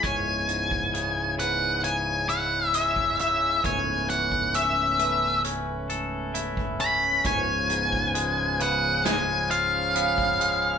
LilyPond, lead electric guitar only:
\new Staff \with { instrumentName = "Lead electric guitar" } { \time 4/4 \key cis \minor \tempo 4 = 66 gis''4. fis''8 gis''8 fis''8 e''8 e''8 | gis''8 fis''8 e''4 r4. b''8 | gis''4. fis''8 gis''8 eis''4. | }